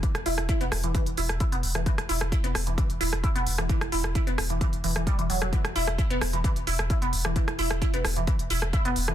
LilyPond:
<<
  \new Staff \with { instrumentName = "Synth arpeggio sound" } { \time 4/4 \key b \phrygian \tempo 4 = 131 e16 r16 e'16 r16 e'16 b16 r16 e16 e16 r16 e'16 r16 e'16 b16 r16 e16 | e16 r16 e'16 r16 e'16 b16 r16 e16 e16 r16 e'16 r16 e'16 b16 r16 e16 | e16 r16 e'16 r16 e'16 b16 r16 e16 e16 r16 e16 e16 g16 e16 fis16 fis16 | e16 r16 e'16 r16 e'16 b16 r16 e16 e16 r16 e'16 r16 e'16 b16 r16 e16 |
e16 r16 e'16 r16 e'16 b16 r16 e16 e16 r16 e'16 r16 e'16 b16 r16 e16 | }
  \new Staff \with { instrumentName = "Sub bass" } { \clef bass \time 4/4 \key b \phrygian r16 e,,16 e,,16 e,,16 r16 e,,16 e,,16 e,,16 r16 e,,16 e,,16 e,,16 r16 e,,16 e,,16 e,,16 | r16 e,,16 e,,16 e,,16 r16 e,,16 e,,16 e,,16 r16 e,,16 e,,16 e,,16 r16 e,,16 e,,16 e,,16 | r16 e,,16 e,,16 e,,16 r16 e,,16 e,,16 e,,16 r16 e,,16 e,,16 e,,16 r16 e,,16 e,,16 e,,16 | r16 e,,16 e,,16 e,,16 r16 e,,16 e,,16 e,,16 r16 e,,16 e,,16 e,,16 r16 e,,16 e,,16 e,,16 |
r16 e,,16 e,,16 e,,16 r16 e,,16 e,,16 e,,16 r16 e,,16 e,,16 e,,16 r16 e,,16 e,,16 e,,16 | }
  \new DrumStaff \with { instrumentName = "Drums" } \drummode { \time 4/4 <hh bd>16 <hh ss>16 hho16 <hh ss>16 <hh bd>16 hh16 <hho ss>16 hh16 <hh bd>16 hh16 hho16 <hh ss>16 <hh bd>16 hh16 hho16 <hh ss>16 | <hh bd>16 <hh ss>16 hho16 <hh ss>16 <hh bd>16 hh16 <hho ss>16 hh16 <hh bd>16 hh16 hho16 <hh ss>16 <hh bd>16 hh16 hho16 <hh ss>16 | <hh bd>16 <hh ss>16 hho16 ss16 <hh bd>16 hh16 <hho ss>16 hh16 <hh bd>16 hh16 hho16 <hh ss>16 <hh bd>16 hh16 hho16 <hh ss>16 | <hh bd>16 <hh ss>16 hho16 <hh ss>16 <hh bd>16 hh16 <hho ss>16 hh16 <hh bd>16 hh16 hho16 <hh ss>16 <hh bd>16 hh16 hho16 ss16 |
<hh bd>16 <hh ss>16 hho16 <hh ss>16 <hh bd>16 hh16 <hho ss>16 hh16 <hh bd>16 hh16 hho16 ss16 <hh bd>16 hh16 hho16 <hh ss>16 | }
>>